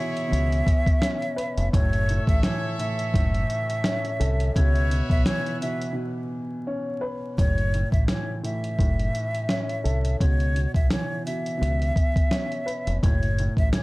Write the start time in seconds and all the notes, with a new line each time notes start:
Already playing: B2 E3 E4 G#4 C#5 E5
0.17 closed hi-hat
0.28 C#2 B2
0.33 closed hi-hat
0.52 closed hi-hat
0.67 kick, closed hi-hat
0.86 kick, closed hi-hat
1.02 C#4, snare, closed hi-hat
1.22 closed hi-hat
1.36 B4, closed hi-hat
1.57 F1, closed hi-hat
1.73 F#1 A2 A4 C#5 E5, kick, closed hi-hat
1.93 closed hi-hat
2.09 A2, closed hi-hat
2.27 A1 E5, kick, closed hi-hat
2.43 E3 C#5, snare, closed hi-hat
2.79 A2 E5, closed hi-hat
2.99 closed hi-hat
3.14 F#1 A2, kick, closed hi-hat
3.35 closed hi-hat
3.50 closed hi-hat
3.70 closed hi-hat
3.84 C#4, snare, closed hi-hat
4.05 closed hi-hat
4.20 C2 A4, closed hi-hat
4.40 closed hi-hat
4.55 C#2 B2 B4 C#5 E5, kick, closed hi-hat
4.76 closed hi-hat
4.90 B2, closed hi-hat
5.10 B1 E5, kick, closed hi-hat
5.26 E3 C#5, snare, closed hi-hat
5.46 closed hi-hat
5.61 B2 E5, closed hi-hat
5.81 closed hi-hat
5.93 B2
6.67 C#4
7.01 B4
7.38 F#1 A2 C#5, kick, closed hi-hat
7.58 closed hi-hat
7.74 A2, closed hi-hat
7.92 A1 E5, kick, closed hi-hat
8.08 E3 C#5, snare, closed hi-hat
8.43 A2 E5, closed hi-hat
8.64 closed hi-hat
8.79 F#1 A2, kick, closed hi-hat
8.99 closed hi-hat
9.15 closed hi-hat
9.35 closed hi-hat
9.49 C#4, snare, closed hi-hat
9.69 closed hi-hat
9.84 C2 A4, closed hi-hat
10.05 closed hi-hat
10.20 C#2 B2 C#5, kick, closed hi-hat
10.40 closed hi-hat
10.55 B2, closed hi-hat
10.74 B1 E5, kick, closed hi-hat
10.90 E3 C#5, snare, closed hi-hat
11.26 B2 E5, closed hi-hat
11.46 closed hi-hat
11.58 C#2 B2
11.63 closed hi-hat
11.82 closed hi-hat
11.96 kick, closed hi-hat
12.16 kick, closed hi-hat
12.31 C#4, snare, closed hi-hat
12.52 closed hi-hat
12.66 B4, closed hi-hat
12.87 F1, closed hi-hat
13.03 F#1 A2 C#5, kick, closed hi-hat
13.23 closed hi-hat
13.39 A2, closed hi-hat
13.57 A1 E5, kick, closed hi-hat
13.73 E3 C#5, snare, closed hi-hat